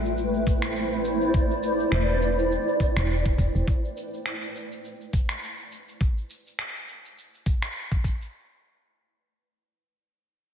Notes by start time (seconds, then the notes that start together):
Already playing: A1 A3 E4 B4 C5 G5
0.05 cabasa
0.18 cabasa
0.34 cabasa
0.43 D5, kick, cabasa
0.62 finger snap, cabasa
0.76 cabasa
0.92 cabasa
1.05 cabasa
1.21 cabasa
1.34 kick, cabasa
1.51 cabasa
1.63 cabasa
1.80 cabasa
1.92 E1, finger snap, cabasa
2.09 cabasa
2.22 cabasa
2.39 cabasa
2.52 cabasa
2.68 cabasa
2.80 kick, cabasa
2.96 E1, finger snap, cabasa
3.10 cabasa
3.26 kick, cabasa
3.38 E1, kick, cabasa
3.55 E1, cabasa
3.68 kick, cabasa
3.85 cabasa
3.97 cabasa
4.14 cabasa
4.26 finger snap, cabasa
4.43 cabasa
4.56 cabasa
4.72 cabasa
4.85 cabasa
5.01 cabasa
5.13 kick, cabasa
5.29 finger snap, cabasa
5.43 cabasa
5.59 cabasa
5.72 cabasa
5.88 cabasa
6.01 kick, cabasa
6.18 cabasa
6.30 cabasa
6.47 cabasa
6.59 finger snap, cabasa
6.76 cabasa
6.89 cabasa
7.05 cabasa
7.18 cabasa
7.34 cabasa
7.46 kick, cabasa
7.62 finger snap, cabasa
7.76 cabasa
7.92 kick, cabasa
8.04 kick, cabasa
8.21 cabasa